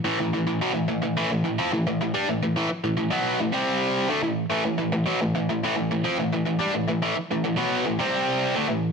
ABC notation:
X:1
M:4/4
L:1/16
Q:1/4=108
K:Ador
V:1 name="Overdriven electric guitar" clef=bass
[A,,E,] [A,,E,] [A,,E,] [A,,E,] [B,,F,] [A,,E,] [A,,E,] [A,,E,] [A,,E,] [A,,E,] [A,,E,] [=F,C] [A,,E,] [A,,E,] [A,,E,] [G,D] | [A,,E,] [A,,E,] [A,,E,] z [A,,E,] [A,,E,] [B,,F,B,]2 [A,,E,] [C,G,C]4 [D,A,] [A,,E,]2 | [A,,E,] [A,,E,] [A,,E,] [A,,E,] [B,,F,] [A,,E,] [A,,E,] [A,,E,] [A,,E,] [A,,E,] [A,,E,] [=F,C] [A,,E,] [A,,E,] [A,,E,] [G,D] | [A,,E,] [A,,E,] [A,,E,] z [A,,E,] [A,,E,] [B,,F,B,]2 [A,,E,] [C,G,C]4 [D,A,] [A,,E,]2 |]